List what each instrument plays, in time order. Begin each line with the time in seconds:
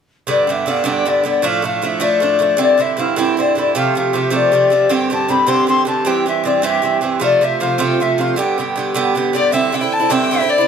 0.27 bouzouki G2 D3 B3 D4, flute D5
0.47 bouzouki G2 D3 B3 D4, flute E5
0.66 bouzouki G2 D3 B3 D4, flute F5
0.84 bouzouki G2 D3 B3 D4, flute G5
1.06 bouzouki G2 D3 B3 D4, flute D5
1.24 bouzouki G2 D3 B3 D4, flute D5
1.42 bouzouki A2 F3 A3 D4, flute F5
1.62 bouzouki A2 F3 A3 D4, flute F5
1.82 bouzouki A2 F3 A3 D4, flute E5
2.00 bouzouki A2 F3 A3 D4, flute D5
2.20 bouzouki A2 F3 A3 D4
2.39 bouzouki A2 F3 A3 D4
2.57 bouzouki G2 D3 C4 E4
2.61 flute D5
2.78 bouzouki G2 D3 C4 E4, flute E5
2.97 bouzouki G2 D3 C4 E4, flute F5
3.16 bouzouki G2 D3 C4 E4, flute G5
3.37 bouzouki G2 D3 C4 E4, flute D5
3.55 bouzouki G2 D3 C4 E4, flute D5
3.75 bouzouki C3 F3 A3 G4, flute F5
3.95 bouzouki C3 F3 A3 G4, flute F5
4.13 bouzouki C3 F3 A3 G4, flute E5
4.25 flute E5
4.30 bouzouki C3 F3 A3 G4, flute D5
4.52 bouzouki C3 F3 A3 G4
4.70 bouzouki C3 F3 A3 G4
4.89 bouzouki G2 D3 C4 G4, flute G5
5.10 bouzouki G2 D3 C4 G4, flute A5
5.28 bouzouki G2 D3 C4 G4, flute B5
5.47 bouzouki G2 D3 C4 G4, flute C6
5.67 bouzouki G2 D3 C4 G4, flute C6
5.85 bouzouki G2 D3 C4 G4, flute A5
6.05 bouzouki G2 E3 C4 G4, flute G5
6.26 bouzouki G2 E3 C4 G4, flute E5
6.44 bouzouki G2 E3 C4 G4, flute D5
6.62 bouzouki G2 E3 C4 G4, flute E5
6.82 bouzouki G2 E3 C4 G4
7.01 bouzouki G2 E3 C4 G4
7.20 bouzouki C3 F3 A3 F4, flute D5
7.41 bouzouki C3 F3 A3 F4, flute E5
7.60 bouzouki C3 F3 A3 F4, flute F5
7.78 bouzouki C3 F3 A3 F4, flute G5
8.00 bouzouki C3 F3 A3 F4, flute E5
8.18 bouzouki C3 F3 A3 F4, flute F5
8.36 bouzouki G2 D3 B3 G4, flute G5
8.58 bouzouki G2 D3 B3 G4
8.76 bouzouki G2 D3 B3 G4
8.95 bouzouki G2 D3 B3 G4
9.15 bouzouki G2 D3 B3 G4
9.33 bouzouki G2 D3 B3 G4, flute D5, fiddle D5
9.51 bouzouki G2 D3 C4 E4, flute E5, fiddle E5
9.72 bouzouki G2 D3 C4 E4, fiddle G5, flute G5
9.81 bouzouki D3 C4 E4
9.92 fiddle A5, flute A5
10.00 bouzouki D3 C4 E4
10.10 bouzouki G2 D3 C4 E4, flute G5, fiddle G5
10.30 bouzouki G2 D3 C4 E4, flute E5
10.41 bouzouki D3 C4 E4
10.49 flute D5, fiddle D5
10.58 bouzouki D3 C4 E4